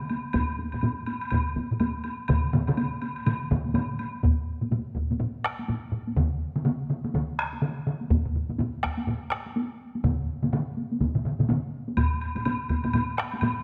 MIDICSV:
0, 0, Header, 1, 3, 480
1, 0, Start_track
1, 0, Tempo, 484262
1, 341, Time_signature, 4, 2, 24, 8
1, 13513, End_track
2, 0, Start_track
2, 0, Title_t, "Taiko and cinematic ensemble drums"
2, 10, Note_on_c, 9, 48, 22
2, 104, Note_off_c, 9, 48, 0
2, 104, Note_on_c, 9, 48, 55
2, 203, Note_off_c, 9, 48, 0
2, 250, Note_on_c, 9, 48, 23
2, 339, Note_off_c, 9, 48, 0
2, 339, Note_on_c, 9, 48, 74
2, 340, Note_on_c, 9, 41, 86
2, 341, Note_on_c, 9, 45, 95
2, 438, Note_off_c, 9, 48, 0
2, 439, Note_off_c, 9, 41, 0
2, 440, Note_off_c, 9, 45, 0
2, 486, Note_on_c, 9, 48, 24
2, 583, Note_off_c, 9, 48, 0
2, 583, Note_on_c, 9, 48, 53
2, 682, Note_off_c, 9, 48, 0
2, 724, Note_on_c, 9, 48, 24
2, 730, Note_on_c, 9, 45, 65
2, 820, Note_off_c, 9, 48, 0
2, 820, Note_on_c, 9, 48, 71
2, 823, Note_off_c, 9, 45, 0
2, 823, Note_on_c, 9, 45, 91
2, 920, Note_off_c, 9, 48, 0
2, 922, Note_off_c, 9, 45, 0
2, 972, Note_on_c, 9, 48, 21
2, 1064, Note_off_c, 9, 48, 0
2, 1064, Note_on_c, 9, 48, 57
2, 1164, Note_off_c, 9, 48, 0
2, 1212, Note_on_c, 9, 48, 21
2, 1307, Note_off_c, 9, 48, 0
2, 1307, Note_on_c, 9, 48, 68
2, 1309, Note_on_c, 9, 45, 90
2, 1311, Note_on_c, 9, 41, 67
2, 1406, Note_off_c, 9, 48, 0
2, 1408, Note_off_c, 9, 45, 0
2, 1410, Note_off_c, 9, 41, 0
2, 1449, Note_on_c, 9, 48, 22
2, 1548, Note_off_c, 9, 48, 0
2, 1548, Note_on_c, 9, 48, 54
2, 1550, Note_on_c, 9, 41, 73
2, 1647, Note_off_c, 9, 48, 0
2, 1649, Note_off_c, 9, 41, 0
2, 1698, Note_on_c, 9, 45, 67
2, 1789, Note_on_c, 9, 48, 72
2, 1790, Note_off_c, 9, 45, 0
2, 1790, Note_on_c, 9, 45, 87
2, 1888, Note_off_c, 9, 48, 0
2, 1889, Note_off_c, 9, 45, 0
2, 1937, Note_on_c, 9, 48, 19
2, 2028, Note_off_c, 9, 48, 0
2, 2028, Note_on_c, 9, 48, 49
2, 2128, Note_off_c, 9, 48, 0
2, 2181, Note_on_c, 9, 48, 19
2, 2269, Note_on_c, 9, 47, 84
2, 2272, Note_on_c, 9, 41, 103
2, 2273, Note_off_c, 9, 48, 0
2, 2273, Note_on_c, 9, 48, 65
2, 2279, Note_on_c, 9, 45, 98
2, 2368, Note_off_c, 9, 47, 0
2, 2371, Note_off_c, 9, 41, 0
2, 2372, Note_off_c, 9, 48, 0
2, 2378, Note_off_c, 9, 45, 0
2, 2417, Note_on_c, 9, 48, 20
2, 2509, Note_on_c, 9, 47, 99
2, 2513, Note_off_c, 9, 48, 0
2, 2513, Note_on_c, 9, 48, 51
2, 2519, Note_on_c, 9, 45, 93
2, 2608, Note_off_c, 9, 47, 0
2, 2612, Note_off_c, 9, 48, 0
2, 2618, Note_off_c, 9, 45, 0
2, 2657, Note_on_c, 9, 47, 96
2, 2664, Note_on_c, 9, 45, 86
2, 2749, Note_on_c, 9, 48, 64
2, 2756, Note_off_c, 9, 47, 0
2, 2763, Note_off_c, 9, 45, 0
2, 2848, Note_off_c, 9, 48, 0
2, 2893, Note_on_c, 9, 48, 20
2, 2992, Note_off_c, 9, 48, 0
2, 2994, Note_on_c, 9, 48, 50
2, 3093, Note_off_c, 9, 48, 0
2, 3133, Note_on_c, 9, 48, 21
2, 3232, Note_off_c, 9, 48, 0
2, 3233, Note_on_c, 9, 48, 61
2, 3236, Note_on_c, 9, 47, 92
2, 3240, Note_on_c, 9, 45, 94
2, 3332, Note_off_c, 9, 48, 0
2, 3335, Note_off_c, 9, 47, 0
2, 3339, Note_off_c, 9, 45, 0
2, 3477, Note_on_c, 9, 45, 91
2, 3477, Note_on_c, 9, 48, 55
2, 3478, Note_on_c, 9, 41, 72
2, 3479, Note_on_c, 9, 47, 92
2, 3576, Note_off_c, 9, 45, 0
2, 3576, Note_off_c, 9, 48, 0
2, 3577, Note_off_c, 9, 41, 0
2, 3578, Note_off_c, 9, 47, 0
2, 3622, Note_on_c, 9, 48, 44
2, 3708, Note_off_c, 9, 48, 0
2, 3708, Note_on_c, 9, 48, 63
2, 3716, Note_on_c, 9, 47, 91
2, 3717, Note_on_c, 9, 45, 84
2, 3807, Note_off_c, 9, 48, 0
2, 3815, Note_off_c, 9, 47, 0
2, 3816, Note_off_c, 9, 45, 0
2, 3865, Note_on_c, 9, 48, 19
2, 3960, Note_off_c, 9, 48, 0
2, 3960, Note_on_c, 9, 48, 44
2, 4059, Note_off_c, 9, 48, 0
2, 4107, Note_on_c, 9, 48, 20
2, 4193, Note_on_c, 9, 45, 85
2, 4197, Note_off_c, 9, 48, 0
2, 4197, Note_on_c, 9, 48, 50
2, 4198, Note_on_c, 9, 41, 88
2, 4292, Note_off_c, 9, 45, 0
2, 4296, Note_off_c, 9, 48, 0
2, 4298, Note_off_c, 9, 41, 0
2, 4581, Note_on_c, 9, 45, 59
2, 4584, Note_on_c, 9, 48, 39
2, 4676, Note_off_c, 9, 48, 0
2, 4676, Note_on_c, 9, 48, 52
2, 4680, Note_off_c, 9, 45, 0
2, 4683, Note_on_c, 9, 45, 85
2, 4775, Note_off_c, 9, 48, 0
2, 4782, Note_off_c, 9, 45, 0
2, 4910, Note_on_c, 9, 41, 59
2, 4918, Note_on_c, 9, 48, 36
2, 4920, Note_on_c, 9, 45, 60
2, 5010, Note_off_c, 9, 41, 0
2, 5017, Note_off_c, 9, 48, 0
2, 5019, Note_off_c, 9, 45, 0
2, 5060, Note_on_c, 9, 48, 43
2, 5064, Note_on_c, 9, 45, 62
2, 5151, Note_off_c, 9, 45, 0
2, 5151, Note_on_c, 9, 45, 87
2, 5157, Note_off_c, 9, 48, 0
2, 5157, Note_on_c, 9, 48, 51
2, 5250, Note_off_c, 9, 45, 0
2, 5256, Note_off_c, 9, 48, 0
2, 5399, Note_on_c, 9, 37, 66
2, 5498, Note_off_c, 9, 37, 0
2, 5543, Note_on_c, 9, 48, 40
2, 5634, Note_off_c, 9, 48, 0
2, 5634, Note_on_c, 9, 48, 55
2, 5642, Note_on_c, 9, 45, 78
2, 5733, Note_off_c, 9, 48, 0
2, 5741, Note_off_c, 9, 45, 0
2, 5876, Note_on_c, 9, 45, 78
2, 5975, Note_off_c, 9, 45, 0
2, 6024, Note_on_c, 9, 48, 41
2, 6114, Note_on_c, 9, 41, 92
2, 6116, Note_on_c, 9, 47, 84
2, 6121, Note_off_c, 9, 48, 0
2, 6121, Note_on_c, 9, 48, 50
2, 6213, Note_off_c, 9, 41, 0
2, 6215, Note_off_c, 9, 47, 0
2, 6220, Note_off_c, 9, 48, 0
2, 6498, Note_on_c, 9, 47, 65
2, 6507, Note_on_c, 9, 48, 43
2, 6598, Note_off_c, 9, 47, 0
2, 6598, Note_on_c, 9, 47, 90
2, 6606, Note_off_c, 9, 48, 0
2, 6606, Note_on_c, 9, 48, 53
2, 6697, Note_off_c, 9, 47, 0
2, 6705, Note_off_c, 9, 48, 0
2, 6836, Note_on_c, 9, 47, 63
2, 6846, Note_on_c, 9, 48, 39
2, 6935, Note_off_c, 9, 47, 0
2, 6945, Note_off_c, 9, 48, 0
2, 6980, Note_on_c, 9, 47, 57
2, 6981, Note_on_c, 9, 48, 42
2, 7078, Note_on_c, 9, 41, 68
2, 7079, Note_off_c, 9, 47, 0
2, 7081, Note_off_c, 9, 48, 0
2, 7082, Note_on_c, 9, 48, 58
2, 7084, Note_on_c, 9, 47, 89
2, 7177, Note_off_c, 9, 41, 0
2, 7181, Note_off_c, 9, 48, 0
2, 7183, Note_off_c, 9, 47, 0
2, 7326, Note_on_c, 9, 37, 64
2, 7425, Note_off_c, 9, 37, 0
2, 7465, Note_on_c, 9, 48, 39
2, 7552, Note_on_c, 9, 47, 92
2, 7557, Note_off_c, 9, 48, 0
2, 7557, Note_on_c, 9, 48, 60
2, 7651, Note_off_c, 9, 47, 0
2, 7656, Note_off_c, 9, 48, 0
2, 7799, Note_on_c, 9, 47, 83
2, 7898, Note_off_c, 9, 47, 0
2, 7940, Note_on_c, 9, 48, 45
2, 8036, Note_off_c, 9, 48, 0
2, 8036, Note_on_c, 9, 41, 98
2, 8036, Note_on_c, 9, 48, 59
2, 8037, Note_on_c, 9, 45, 62
2, 8135, Note_off_c, 9, 41, 0
2, 8135, Note_off_c, 9, 48, 0
2, 8136, Note_off_c, 9, 45, 0
2, 8184, Note_on_c, 9, 45, 67
2, 8280, Note_off_c, 9, 45, 0
2, 8280, Note_on_c, 9, 45, 61
2, 8379, Note_off_c, 9, 45, 0
2, 8418, Note_on_c, 9, 48, 47
2, 8422, Note_on_c, 9, 45, 61
2, 8509, Note_off_c, 9, 48, 0
2, 8509, Note_on_c, 9, 48, 62
2, 8515, Note_off_c, 9, 45, 0
2, 8515, Note_on_c, 9, 45, 90
2, 8608, Note_off_c, 9, 48, 0
2, 8614, Note_off_c, 9, 45, 0
2, 8752, Note_on_c, 9, 37, 68
2, 8755, Note_on_c, 9, 48, 44
2, 8762, Note_on_c, 9, 41, 60
2, 8851, Note_off_c, 9, 37, 0
2, 8855, Note_off_c, 9, 48, 0
2, 8861, Note_off_c, 9, 41, 0
2, 8898, Note_on_c, 9, 48, 46
2, 8993, Note_off_c, 9, 48, 0
2, 8993, Note_on_c, 9, 45, 89
2, 8993, Note_on_c, 9, 48, 58
2, 9092, Note_off_c, 9, 45, 0
2, 9092, Note_off_c, 9, 48, 0
2, 9234, Note_on_c, 9, 37, 64
2, 9333, Note_off_c, 9, 37, 0
2, 9380, Note_on_c, 9, 48, 47
2, 9475, Note_off_c, 9, 48, 0
2, 9475, Note_on_c, 9, 48, 64
2, 9574, Note_off_c, 9, 48, 0
2, 9865, Note_on_c, 9, 48, 50
2, 9952, Note_on_c, 9, 41, 86
2, 9953, Note_on_c, 9, 47, 91
2, 9954, Note_on_c, 9, 45, 89
2, 9964, Note_off_c, 9, 48, 0
2, 9964, Note_on_c, 9, 48, 66
2, 10051, Note_off_c, 9, 41, 0
2, 10052, Note_off_c, 9, 47, 0
2, 10053, Note_off_c, 9, 45, 0
2, 10063, Note_off_c, 9, 48, 0
2, 10336, Note_on_c, 9, 47, 66
2, 10338, Note_on_c, 9, 45, 59
2, 10345, Note_on_c, 9, 48, 53
2, 10434, Note_off_c, 9, 45, 0
2, 10434, Note_on_c, 9, 45, 88
2, 10435, Note_off_c, 9, 47, 0
2, 10439, Note_on_c, 9, 47, 92
2, 10443, Note_off_c, 9, 48, 0
2, 10443, Note_on_c, 9, 48, 63
2, 10533, Note_off_c, 9, 45, 0
2, 10538, Note_off_c, 9, 47, 0
2, 10543, Note_off_c, 9, 48, 0
2, 10675, Note_on_c, 9, 48, 49
2, 10775, Note_off_c, 9, 48, 0
2, 10821, Note_on_c, 9, 48, 50
2, 10909, Note_on_c, 9, 45, 64
2, 10910, Note_off_c, 9, 48, 0
2, 10910, Note_on_c, 9, 48, 67
2, 10912, Note_on_c, 9, 47, 60
2, 10915, Note_on_c, 9, 41, 61
2, 11008, Note_off_c, 9, 45, 0
2, 11009, Note_off_c, 9, 48, 0
2, 11011, Note_off_c, 9, 47, 0
2, 11014, Note_off_c, 9, 41, 0
2, 11050, Note_on_c, 9, 47, 63
2, 11054, Note_on_c, 9, 45, 65
2, 11149, Note_off_c, 9, 47, 0
2, 11152, Note_on_c, 9, 47, 67
2, 11153, Note_off_c, 9, 45, 0
2, 11153, Note_on_c, 9, 45, 62
2, 11251, Note_off_c, 9, 47, 0
2, 11253, Note_off_c, 9, 45, 0
2, 11290, Note_on_c, 9, 48, 51
2, 11296, Note_on_c, 9, 45, 67
2, 11300, Note_on_c, 9, 47, 65
2, 11386, Note_off_c, 9, 48, 0
2, 11386, Note_on_c, 9, 48, 69
2, 11395, Note_off_c, 9, 45, 0
2, 11396, Note_off_c, 9, 47, 0
2, 11396, Note_on_c, 9, 47, 86
2, 11397, Note_on_c, 9, 45, 83
2, 11485, Note_off_c, 9, 48, 0
2, 11495, Note_off_c, 9, 47, 0
2, 11496, Note_off_c, 9, 45, 0
2, 11773, Note_on_c, 9, 48, 50
2, 11864, Note_off_c, 9, 48, 0
2, 11864, Note_on_c, 9, 48, 67
2, 11871, Note_on_c, 9, 45, 90
2, 11872, Note_on_c, 9, 41, 88
2, 11963, Note_off_c, 9, 48, 0
2, 11970, Note_off_c, 9, 45, 0
2, 11971, Note_off_c, 9, 41, 0
2, 12253, Note_on_c, 9, 45, 62
2, 12255, Note_on_c, 9, 48, 53
2, 12349, Note_off_c, 9, 45, 0
2, 12349, Note_off_c, 9, 48, 0
2, 12349, Note_on_c, 9, 45, 88
2, 12349, Note_on_c, 9, 48, 71
2, 12448, Note_off_c, 9, 45, 0
2, 12448, Note_off_c, 9, 48, 0
2, 12587, Note_on_c, 9, 45, 66
2, 12588, Note_on_c, 9, 41, 66
2, 12591, Note_on_c, 9, 48, 48
2, 12686, Note_off_c, 9, 45, 0
2, 12687, Note_off_c, 9, 41, 0
2, 12690, Note_off_c, 9, 48, 0
2, 12726, Note_on_c, 9, 45, 74
2, 12737, Note_on_c, 9, 48, 53
2, 12823, Note_off_c, 9, 45, 0
2, 12823, Note_on_c, 9, 45, 90
2, 12836, Note_off_c, 9, 48, 0
2, 12837, Note_on_c, 9, 48, 67
2, 12922, Note_off_c, 9, 45, 0
2, 12936, Note_off_c, 9, 48, 0
2, 13064, Note_on_c, 9, 37, 71
2, 13164, Note_off_c, 9, 37, 0
2, 13217, Note_on_c, 9, 48, 54
2, 13301, Note_on_c, 9, 45, 88
2, 13311, Note_off_c, 9, 48, 0
2, 13311, Note_on_c, 9, 48, 74
2, 13400, Note_off_c, 9, 45, 0
2, 13410, Note_off_c, 9, 48, 0
2, 13513, End_track
3, 0, Start_track
3, 0, Title_t, "Drums"
3, 94, Note_on_c, 9, 76, 40
3, 193, Note_off_c, 9, 76, 0
3, 329, Note_on_c, 9, 76, 48
3, 428, Note_off_c, 9, 76, 0
3, 715, Note_on_c, 9, 76, 40
3, 806, Note_off_c, 9, 76, 0
3, 806, Note_on_c, 9, 76, 37
3, 905, Note_off_c, 9, 76, 0
3, 1055, Note_on_c, 9, 76, 40
3, 1154, Note_off_c, 9, 76, 0
3, 1203, Note_on_c, 9, 76, 38
3, 1293, Note_off_c, 9, 76, 0
3, 1293, Note_on_c, 9, 76, 48
3, 1392, Note_off_c, 9, 76, 0
3, 1781, Note_on_c, 9, 76, 39
3, 1880, Note_off_c, 9, 76, 0
3, 2019, Note_on_c, 9, 76, 41
3, 2118, Note_off_c, 9, 76, 0
3, 2260, Note_on_c, 9, 76, 48
3, 2359, Note_off_c, 9, 76, 0
3, 2650, Note_on_c, 9, 76, 35
3, 2749, Note_off_c, 9, 76, 0
3, 2749, Note_on_c, 9, 76, 39
3, 2848, Note_off_c, 9, 76, 0
3, 2989, Note_on_c, 9, 76, 37
3, 3088, Note_off_c, 9, 76, 0
3, 3133, Note_on_c, 9, 76, 38
3, 3232, Note_off_c, 9, 76, 0
3, 3236, Note_on_c, 9, 76, 46
3, 3335, Note_off_c, 9, 76, 0
3, 3716, Note_on_c, 9, 76, 39
3, 3815, Note_off_c, 9, 76, 0
3, 3956, Note_on_c, 9, 76, 36
3, 4055, Note_off_c, 9, 76, 0
3, 11864, Note_on_c, 9, 76, 51
3, 11964, Note_off_c, 9, 76, 0
3, 12107, Note_on_c, 9, 76, 41
3, 12206, Note_off_c, 9, 76, 0
3, 12250, Note_on_c, 9, 76, 39
3, 12344, Note_off_c, 9, 76, 0
3, 12344, Note_on_c, 9, 76, 47
3, 12443, Note_off_c, 9, 76, 0
3, 12582, Note_on_c, 9, 76, 38
3, 12681, Note_off_c, 9, 76, 0
3, 12725, Note_on_c, 9, 76, 38
3, 12820, Note_off_c, 9, 76, 0
3, 12820, Note_on_c, 9, 76, 45
3, 12920, Note_off_c, 9, 76, 0
3, 13057, Note_on_c, 9, 76, 36
3, 13156, Note_off_c, 9, 76, 0
3, 13198, Note_on_c, 9, 76, 40
3, 13292, Note_off_c, 9, 76, 0
3, 13292, Note_on_c, 9, 76, 48
3, 13391, Note_off_c, 9, 76, 0
3, 13513, End_track
0, 0, End_of_file